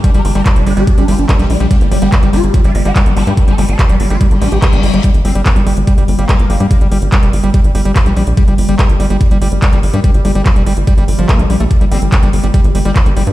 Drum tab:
HH |xxoxxxoxxxoxxxox|xxoxxxoxxxoxxxox|xxoxxxoxxxoxxxox|xxoxxxoxxxoxxxox|
CP |----x-------x---|----x-------x---|----x-------x---|----x-------x---|
BD |o---o---o---o---|o---o---o---o---|o---o---o---o---|o---o---o---o---|

HH |xxoxxxoxxxoxxxox|xxoxxxoxxxoxxxox|xxoxxxoxxxoxxxox|xxoxxxoxxxoxxxox|
CP |----x-------x---|----x-------x---|----x-------x---|----x-------x---|
BD |o---o---o---o---|o---o---o---o---|o---o---o---o---|o---o---o---o---|